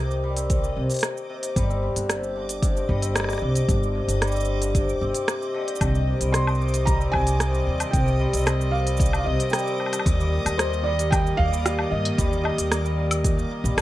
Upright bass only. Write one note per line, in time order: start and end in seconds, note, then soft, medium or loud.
0.00 0.69 C2 medium
0.76 0.85 C2 medium
1.56 1.88 G1 medium
1.96 2.81 G1 medium
2.89 3.34 G1 medium
3.42 3.59 C2 medium
3.69 4.01 G1 medium
4.08 4.93 G1 medium
5.01 5.10 G1 medium
5.81 6.13 C2 medium
6.21 7.06 C2 medium
7.14 7.59 C2 medium
7.67 7.84 D#2 medium
7.93 8.25 C2 medium
8.33 9.18 C2 medium
9.26 9.35 C2 medium
10.06 10.38 D#2 loud
10.46 11.31 D#2 medium
11.39 11.84 D#2 medium
11.92 12.09 G2 medium
12.18 12.50 D#2 loud
12.58 13.43 D#2 medium
13.64 13.73 A#1 medium
13.77 13.81 A#1 loud